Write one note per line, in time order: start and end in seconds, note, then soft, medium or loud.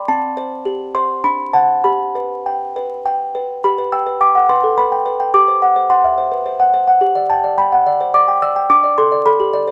0.08 1.20 C4 medium
0.08 0.91 A5 medium
0.37 0.83 C5 soft
0.65 1.12 G4 soft
0.95 1.24 C5 soft
0.95 1.23 C6 medium
1.24 1.82 D4 medium
1.24 1.53 B5 medium
1.53 1.81 C5 soft
1.53 1.81 F#5 soft
1.53 1.83 A5 medium
1.84 3.60 G4 medium
1.84 3.31 B5 medium
2.15 2.64 B4 soft
2.46 2.94 G5 soft
2.76 3.23 B4 soft
3.06 3.62 G5 medium
3.35 3.64 B4 soft
3.64 5.30 G4 medium
3.64 3.92 B5 medium
3.78 4.01 B4 soft
3.92 4.15 G5 soft
3.92 4.20 E6 medium
4.06 4.29 B4 soft
4.21 4.44 G5 soft
4.21 4.48 D6 medium
4.35 4.49 F#5 soft
4.49 4.72 B4 soft
4.49 4.77 C6 medium
4.63 4.78 A4 soft
4.78 5.00 B4 soft
4.78 5.32 B5 medium
4.92 5.15 G5 soft
5.06 5.29 B4 soft
5.20 5.34 G5 soft
5.34 6.97 G4 medium
5.34 5.88 D6 medium
5.48 5.71 C5 soft
5.62 5.85 F#5 soft
5.76 5.99 C5 soft
5.90 6.12 F#5 soft
5.90 6.44 C6 medium
6.04 6.18 E5 soft
6.18 6.40 C5 soft
6.32 6.46 B4 soft
6.46 6.68 C5 soft
6.60 6.82 F#5 soft
6.74 6.96 C5 soft
6.87 7.02 F#5 soft
7.01 8.66 G4 medium
7.15 7.38 D5 soft
7.30 7.52 G5 soft
7.30 7.57 A5 medium
7.44 7.66 D5 soft
7.58 7.80 G5 soft
7.58 8.12 B5 medium
7.72 7.86 F#5 soft
7.86 8.09 D5 medium
8.00 8.14 C5 soft
8.14 8.36 D5 medium
8.14 8.41 D6 medium
8.28 8.50 G5 soft
8.42 8.65 D5 soft
8.42 8.69 E6 medium
8.56 8.70 G5 soft
8.70 9.71 D4 medium
8.70 8.97 D6 medium
8.84 9.06 D5 soft
8.98 9.20 A4 medium
8.98 9.25 C6 medium
9.12 9.34 D5 medium
9.26 9.48 A4 soft
9.26 9.71 B5 loud
9.40 9.54 G4 soft
9.53 9.71 D5 medium
9.67 9.71 C5 soft